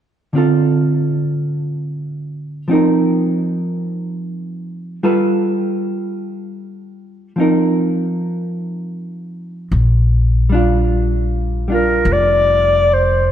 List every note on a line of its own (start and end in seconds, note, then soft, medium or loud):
0.33 2.68 D3 soft
0.33 2.68 C4 soft
0.33 2.69 F4 soft
0.38 2.70 A4 soft
2.68 5.02 F3 soft
2.68 5.03 C4 soft
2.68 5.03 D#4 soft
2.73 5.04 A#4 soft
5.03 7.36 G3 soft
5.03 7.38 F4 soft
5.03 7.38 A4 soft
5.03 7.38 B4 soft
7.36 9.71 F3 soft
7.36 9.72 C4 soft
7.36 9.73 D#4 soft
7.41 9.74 A#4 soft
9.71 12.02 A#1 medium
10.49 11.67 G3 soft
10.49 11.69 D4 soft
10.54 11.71 F4 soft
11.68 13.32 G3 soft
11.68 13.32 D4 soft
11.68 13.32 F4 soft
11.73 12.14 A#4 medium
12.05 13.32 F1 medium
12.13 12.95 D5 medium
12.94 13.32 C5 medium